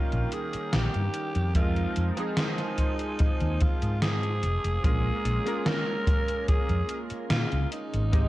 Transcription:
Already playing: D#3 G3 A#3 C#4 D#4 F4 A#4
0.12 A#1, closed hi-hat
0.32 G#4, closed hi-hat
0.53 muted fretless electric bass stroke, closed hi-hat
0.73 A#1 G4, snare, closed hi-hat
0.94 G2, closed hi-hat
1.14 closed hi-hat
1.35 F2, closed hi-hat
1.55 F3 G#3 C4 D#4 F4 A#4, kick, closed hi-hat
1.76 closed hi-hat
1.96 F2, closed hi-hat
2.17 F3 G#3 C4 D#4 G#4, closed hi-hat
2.37 D#4, snare, closed hi-hat
2.58 snare, closed hi-hat
2.78 kick, closed hi-hat
2.99 closed hi-hat
3.19 kick, closed hi-hat
3.40 D#2, closed hi-hat
3.61 F4, kick, closed hi-hat
3.82 G#2, closed hi-hat
4.02 G#4, snare, closed hi-hat
4.23 closed hi-hat
4.43 F1, closed hi-hat
4.64 F1, closed hi-hat
4.83 A#1 G#3 A#3 C#4 F4 G#4 A#4, kick, closed hi-hat
5.25 A#1, closed hi-hat
5.45 G#3 A#3 C#4 F4 A#4, closed hi-hat
5.66 A#4, snare, closed hi-hat
6.07 kick, closed hi-hat
6.28 closed hi-hat
6.48 G#4, muted fretless electric bass stroke, kick, closed hi-hat
6.69 F2, closed hi-hat
6.89 closed hi-hat
7.10 muted fretless electric bass stroke, closed hi-hat
7.30 A#2 F4, snare, closed hi-hat
7.52 C#2, closed hi-hat
7.72 D#4, closed hi-hat
7.94 G#1, closed hi-hat
8.12 G#3 C4 D#4 G4 D#5, kick, closed hi-hat

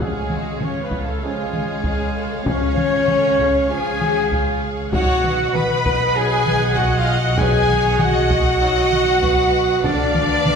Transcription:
0.00 C#2 F3 G#3 C#4 G#4 C#5 F5
0.30 F#4, taiko mid
0.60 C#4 F4 C#5, taiko mid
0.81 B3 B4
0.91 taiko
1.02 A3 A4
1.21 F3 G#3 C#4 F4 G#4 G#5
1.53 taiko mid
1.84 G#4, taiko
2.15 A4
2.44 F3 C#4 G#4 C#5, taiko
2.77 F4, taiko mid
3.08 A4, taiko mid
3.39 G#4, taiko
3.69 F3 C#4 F4 G#4 G#5
4.01 F#4, taiko mid
4.32 F4, taiko
4.64 G#4
4.92 B1 F#3 D#4 F#4 C#5 D#5 F#5, taiko
5.24 B4, taiko mid
5.54 B4 B5, taiko mid
5.86 taiko
6.15 F#3 D#4 G#4 G#5
6.46 taiko mid
6.76 F#4 D#5 F#5, taiko
6.97 F4 F5
7.17 F#4 F#5
7.37 F#3 D#4 G#4 B4 G#5, taiko
7.68 C#5, taiko mid
7.99 F#4 D#5 F#5, taiko mid
8.30 taiko
8.60 F#3 D#4 D#5
8.92 taiko mid
9.22 B4, taiko
9.83 D2 F3 D4 A4 D5 F5, taiko
10.15 B4, taiko mid
10.46 taiko mid

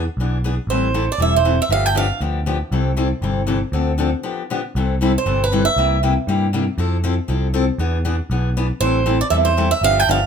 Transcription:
0.17 B1 E3 B3 D4
0.21 G#4
0.44 E3 B3 D4 G#4
0.67 A1 E3 G3 C4 C5
0.71 E4 A4
0.94 E3 G3 C4 E4 A4
1.12 D5
1.18 E1 E3 G3 C4 E4 A4 E5
1.36 C5
1.45 E3 G3 C4 E4 A4
1.62 E5
1.69 G1 D3 F3 B3 D4 G4 F5
1.86 G5
1.95 D3 F3 B3 D4 G4 F5
2.21 D2 D3 F3 B3 D4 G4
2.46 D3 F3 B3 D4 G4
2.71 C2 C3 E3 G3 C4 E4 A4
2.97 C3 E3 G3 C4 E4 A4
3.22 G1 C3 E3 G3 C4 E4 A4
3.47 C3 E3 G3 C4 E4 A4
3.72 D2 D3 F3 C4 D4 A4
3.98 D3 F3 C4 D4 A4
4.23 D3 F3 B3 D4 G4
4.50 D3 F3 B3 D4 G4
4.75 C2 C3 E3 G3 C4 E4 A4
5.01 C3 E3 G3 C4 E4 A4
5.18 C5
5.26 G1 C3 E3 G3 C4 E4 A4
5.44 B4
5.52 C3 E3 G3 C4 E4 A4
5.65 E5
5.76 C2 C3 G3 A#3 E4 G4
6.03 C3 G3 A#3 E4 G4
6.27 G2 C3 G3 A#3 E4 G4
6.53 C3 G3 A#3 E4 G4
6.78 F2 F3 C4 E4 A4
7.04 F3 C4 E4 A4
7.28 C2 F3 C4 E4 A4
7.54 F3 C4 E4 A4
7.78 E2 E3 B3 D4 G#4
8.05 E3 B3 D4 G#4
8.30 B1 E3 B3 D4 G#4
8.57 E3 B3 D4 G#4
8.81 A1 E3 G3 C4 E4 A4 C5
9.06 E3 G3 C4 E4 A4
9.21 D5
9.30 E2 E3 G3 C4 E4 A4 E5
9.45 C5
9.57 E3 G3 C4 E4 A4
9.71 E5
9.81 G1 D3 F3 B3 D4 G4 F5
10.00 G5
10.07 G1 D3 F3 B3 D4 G4 F5

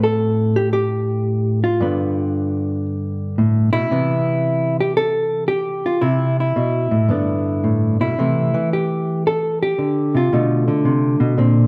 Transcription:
Already playing: A2 A3 C4
0.04 A4
0.56 G4
0.73 G4
1.64 F4
1.80 G2 D3 B3
3.38 A2
3.73 B2 E4
3.91 C3 E3 B3
4.81 G4
4.97 A4
5.48 G4
5.86 F4
6.01 C3 E4
6.40 E4
6.56 B2
6.91 A2
7.09 G2 D3 B3 D4
7.64 A2
8.01 B2 E4
8.19 C3 E3 A3
8.54 E3
8.73 G4
9.27 A4
9.63 G4
9.78 D3
10.15 C3 F4
10.33 B2 D3 A3
10.68 D3
10.85 C3
11.20 B2
11.38 A#2 D3 C4

